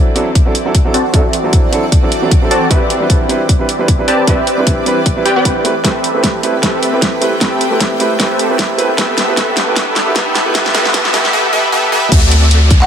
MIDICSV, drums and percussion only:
0, 0, Header, 1, 2, 480
1, 0, Start_track
1, 0, Tempo, 392157
1, 1393, Time_signature, 4, 2, 24, 8
1, 15748, End_track
2, 0, Start_track
2, 0, Title_t, "Drums"
2, 192, Note_on_c, 9, 42, 60
2, 315, Note_off_c, 9, 42, 0
2, 432, Note_on_c, 9, 36, 95
2, 433, Note_on_c, 9, 42, 78
2, 554, Note_off_c, 9, 36, 0
2, 556, Note_off_c, 9, 42, 0
2, 672, Note_on_c, 9, 42, 67
2, 795, Note_off_c, 9, 42, 0
2, 912, Note_on_c, 9, 36, 90
2, 913, Note_on_c, 9, 42, 78
2, 1034, Note_off_c, 9, 36, 0
2, 1035, Note_off_c, 9, 42, 0
2, 1153, Note_on_c, 9, 42, 68
2, 1275, Note_off_c, 9, 42, 0
2, 1391, Note_on_c, 9, 42, 78
2, 1392, Note_on_c, 9, 36, 95
2, 1513, Note_off_c, 9, 42, 0
2, 1514, Note_off_c, 9, 36, 0
2, 1631, Note_on_c, 9, 42, 65
2, 1754, Note_off_c, 9, 42, 0
2, 1871, Note_on_c, 9, 42, 76
2, 1872, Note_on_c, 9, 36, 97
2, 1993, Note_off_c, 9, 42, 0
2, 1994, Note_off_c, 9, 36, 0
2, 2112, Note_on_c, 9, 42, 58
2, 2235, Note_off_c, 9, 42, 0
2, 2351, Note_on_c, 9, 36, 95
2, 2352, Note_on_c, 9, 42, 78
2, 2473, Note_off_c, 9, 36, 0
2, 2474, Note_off_c, 9, 42, 0
2, 2592, Note_on_c, 9, 42, 64
2, 2715, Note_off_c, 9, 42, 0
2, 2831, Note_on_c, 9, 36, 92
2, 2833, Note_on_c, 9, 42, 79
2, 2954, Note_off_c, 9, 36, 0
2, 2956, Note_off_c, 9, 42, 0
2, 3073, Note_on_c, 9, 42, 66
2, 3195, Note_off_c, 9, 42, 0
2, 3311, Note_on_c, 9, 36, 95
2, 3313, Note_on_c, 9, 42, 76
2, 3434, Note_off_c, 9, 36, 0
2, 3435, Note_off_c, 9, 42, 0
2, 3552, Note_on_c, 9, 42, 62
2, 3674, Note_off_c, 9, 42, 0
2, 3791, Note_on_c, 9, 36, 95
2, 3792, Note_on_c, 9, 42, 73
2, 3914, Note_off_c, 9, 36, 0
2, 3915, Note_off_c, 9, 42, 0
2, 4033, Note_on_c, 9, 42, 58
2, 4155, Note_off_c, 9, 42, 0
2, 4271, Note_on_c, 9, 36, 95
2, 4274, Note_on_c, 9, 42, 75
2, 4394, Note_off_c, 9, 36, 0
2, 4396, Note_off_c, 9, 42, 0
2, 4514, Note_on_c, 9, 42, 62
2, 4637, Note_off_c, 9, 42, 0
2, 4752, Note_on_c, 9, 36, 97
2, 4753, Note_on_c, 9, 42, 74
2, 4874, Note_off_c, 9, 36, 0
2, 4875, Note_off_c, 9, 42, 0
2, 4992, Note_on_c, 9, 42, 63
2, 5115, Note_off_c, 9, 42, 0
2, 5232, Note_on_c, 9, 36, 96
2, 5232, Note_on_c, 9, 42, 74
2, 5355, Note_off_c, 9, 36, 0
2, 5355, Note_off_c, 9, 42, 0
2, 5473, Note_on_c, 9, 42, 63
2, 5595, Note_off_c, 9, 42, 0
2, 5713, Note_on_c, 9, 36, 96
2, 5713, Note_on_c, 9, 42, 72
2, 5835, Note_off_c, 9, 36, 0
2, 5835, Note_off_c, 9, 42, 0
2, 5952, Note_on_c, 9, 42, 57
2, 6074, Note_off_c, 9, 42, 0
2, 6192, Note_on_c, 9, 42, 73
2, 6193, Note_on_c, 9, 36, 95
2, 6315, Note_off_c, 9, 36, 0
2, 6315, Note_off_c, 9, 42, 0
2, 6433, Note_on_c, 9, 42, 61
2, 6555, Note_off_c, 9, 42, 0
2, 6673, Note_on_c, 9, 36, 94
2, 6674, Note_on_c, 9, 42, 75
2, 6795, Note_off_c, 9, 36, 0
2, 6796, Note_off_c, 9, 42, 0
2, 6913, Note_on_c, 9, 42, 63
2, 7036, Note_off_c, 9, 42, 0
2, 7153, Note_on_c, 9, 36, 97
2, 7154, Note_on_c, 9, 38, 48
2, 7154, Note_on_c, 9, 42, 74
2, 7275, Note_off_c, 9, 36, 0
2, 7277, Note_off_c, 9, 38, 0
2, 7277, Note_off_c, 9, 42, 0
2, 7393, Note_on_c, 9, 42, 63
2, 7516, Note_off_c, 9, 42, 0
2, 7632, Note_on_c, 9, 36, 95
2, 7633, Note_on_c, 9, 38, 50
2, 7633, Note_on_c, 9, 42, 75
2, 7755, Note_off_c, 9, 36, 0
2, 7755, Note_off_c, 9, 38, 0
2, 7755, Note_off_c, 9, 42, 0
2, 7875, Note_on_c, 9, 42, 56
2, 7997, Note_off_c, 9, 42, 0
2, 8112, Note_on_c, 9, 36, 99
2, 8114, Note_on_c, 9, 38, 53
2, 8114, Note_on_c, 9, 42, 76
2, 8235, Note_off_c, 9, 36, 0
2, 8236, Note_off_c, 9, 38, 0
2, 8236, Note_off_c, 9, 42, 0
2, 8355, Note_on_c, 9, 42, 64
2, 8478, Note_off_c, 9, 42, 0
2, 8592, Note_on_c, 9, 36, 97
2, 8594, Note_on_c, 9, 38, 55
2, 8594, Note_on_c, 9, 42, 77
2, 8714, Note_off_c, 9, 36, 0
2, 8716, Note_off_c, 9, 38, 0
2, 8716, Note_off_c, 9, 42, 0
2, 8832, Note_on_c, 9, 42, 63
2, 8955, Note_off_c, 9, 42, 0
2, 9072, Note_on_c, 9, 36, 94
2, 9072, Note_on_c, 9, 38, 59
2, 9072, Note_on_c, 9, 42, 78
2, 9194, Note_off_c, 9, 36, 0
2, 9194, Note_off_c, 9, 38, 0
2, 9194, Note_off_c, 9, 42, 0
2, 9314, Note_on_c, 9, 42, 68
2, 9436, Note_off_c, 9, 42, 0
2, 9552, Note_on_c, 9, 36, 96
2, 9553, Note_on_c, 9, 38, 61
2, 9553, Note_on_c, 9, 42, 78
2, 9674, Note_off_c, 9, 36, 0
2, 9675, Note_off_c, 9, 38, 0
2, 9675, Note_off_c, 9, 42, 0
2, 9792, Note_on_c, 9, 42, 61
2, 9915, Note_off_c, 9, 42, 0
2, 10032, Note_on_c, 9, 36, 98
2, 10032, Note_on_c, 9, 38, 67
2, 10032, Note_on_c, 9, 42, 78
2, 10154, Note_off_c, 9, 36, 0
2, 10155, Note_off_c, 9, 38, 0
2, 10155, Note_off_c, 9, 42, 0
2, 10274, Note_on_c, 9, 42, 65
2, 10396, Note_off_c, 9, 42, 0
2, 10512, Note_on_c, 9, 36, 97
2, 10514, Note_on_c, 9, 38, 72
2, 10514, Note_on_c, 9, 42, 77
2, 10634, Note_off_c, 9, 36, 0
2, 10636, Note_off_c, 9, 38, 0
2, 10636, Note_off_c, 9, 42, 0
2, 10753, Note_on_c, 9, 42, 66
2, 10875, Note_off_c, 9, 42, 0
2, 10992, Note_on_c, 9, 36, 99
2, 10993, Note_on_c, 9, 38, 75
2, 10993, Note_on_c, 9, 42, 82
2, 11114, Note_off_c, 9, 36, 0
2, 11115, Note_off_c, 9, 38, 0
2, 11115, Note_off_c, 9, 42, 0
2, 11232, Note_on_c, 9, 38, 80
2, 11232, Note_on_c, 9, 42, 70
2, 11354, Note_off_c, 9, 38, 0
2, 11354, Note_off_c, 9, 42, 0
2, 11471, Note_on_c, 9, 36, 98
2, 11472, Note_on_c, 9, 38, 77
2, 11472, Note_on_c, 9, 42, 82
2, 11594, Note_off_c, 9, 36, 0
2, 11594, Note_off_c, 9, 38, 0
2, 11594, Note_off_c, 9, 42, 0
2, 11710, Note_on_c, 9, 38, 80
2, 11710, Note_on_c, 9, 42, 62
2, 11833, Note_off_c, 9, 38, 0
2, 11833, Note_off_c, 9, 42, 0
2, 11951, Note_on_c, 9, 36, 98
2, 11951, Note_on_c, 9, 38, 82
2, 11951, Note_on_c, 9, 42, 82
2, 12073, Note_off_c, 9, 38, 0
2, 12073, Note_off_c, 9, 42, 0
2, 12074, Note_off_c, 9, 36, 0
2, 12192, Note_on_c, 9, 38, 86
2, 12192, Note_on_c, 9, 42, 69
2, 12315, Note_off_c, 9, 38, 0
2, 12315, Note_off_c, 9, 42, 0
2, 12432, Note_on_c, 9, 36, 98
2, 12432, Note_on_c, 9, 38, 90
2, 12432, Note_on_c, 9, 42, 85
2, 12554, Note_off_c, 9, 36, 0
2, 12554, Note_off_c, 9, 38, 0
2, 12554, Note_off_c, 9, 42, 0
2, 12673, Note_on_c, 9, 38, 90
2, 12673, Note_on_c, 9, 42, 68
2, 12795, Note_off_c, 9, 38, 0
2, 12795, Note_off_c, 9, 42, 0
2, 12911, Note_on_c, 9, 36, 101
2, 12912, Note_on_c, 9, 38, 93
2, 12912, Note_on_c, 9, 42, 86
2, 13034, Note_off_c, 9, 36, 0
2, 13034, Note_off_c, 9, 38, 0
2, 13034, Note_off_c, 9, 42, 0
2, 13047, Note_on_c, 9, 38, 80
2, 13152, Note_off_c, 9, 38, 0
2, 13152, Note_on_c, 9, 38, 97
2, 13152, Note_on_c, 9, 42, 70
2, 13275, Note_off_c, 9, 38, 0
2, 13275, Note_off_c, 9, 42, 0
2, 13286, Note_on_c, 9, 38, 81
2, 13391, Note_off_c, 9, 38, 0
2, 13391, Note_on_c, 9, 36, 100
2, 13391, Note_on_c, 9, 38, 96
2, 13391, Note_on_c, 9, 42, 83
2, 13514, Note_off_c, 9, 36, 0
2, 13514, Note_off_c, 9, 38, 0
2, 13514, Note_off_c, 9, 42, 0
2, 13526, Note_on_c, 9, 38, 86
2, 13633, Note_off_c, 9, 38, 0
2, 13633, Note_on_c, 9, 38, 100
2, 13633, Note_on_c, 9, 42, 66
2, 13756, Note_off_c, 9, 38, 0
2, 13756, Note_off_c, 9, 42, 0
2, 13768, Note_on_c, 9, 38, 88
2, 13891, Note_off_c, 9, 38, 0
2, 14832, Note_on_c, 9, 42, 83
2, 14832, Note_on_c, 9, 49, 105
2, 14833, Note_on_c, 9, 36, 119
2, 14955, Note_off_c, 9, 36, 0
2, 14955, Note_off_c, 9, 42, 0
2, 14955, Note_off_c, 9, 49, 0
2, 15073, Note_on_c, 9, 42, 71
2, 15195, Note_off_c, 9, 42, 0
2, 15313, Note_on_c, 9, 42, 85
2, 15435, Note_off_c, 9, 42, 0
2, 15551, Note_on_c, 9, 42, 69
2, 15553, Note_on_c, 9, 36, 104
2, 15674, Note_off_c, 9, 42, 0
2, 15676, Note_off_c, 9, 36, 0
2, 15687, Note_on_c, 9, 39, 37
2, 15748, Note_off_c, 9, 39, 0
2, 15748, End_track
0, 0, End_of_file